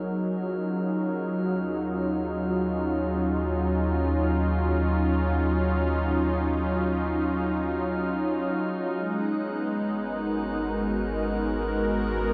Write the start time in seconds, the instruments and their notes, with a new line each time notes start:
Already playing: analog synth pad F#3 B3 D#4 G#4 A#4, glass harmonica F6
0.11 synth drone D#2
0.25 analog synth pad C#4
0.36 analog synth pad F4
8.96 synth drone G#1, analog synth pad G#3
9.01 glass harmonica F#6
9.38 analog synth pad B3
10.09 analog synth pad F#4 A#4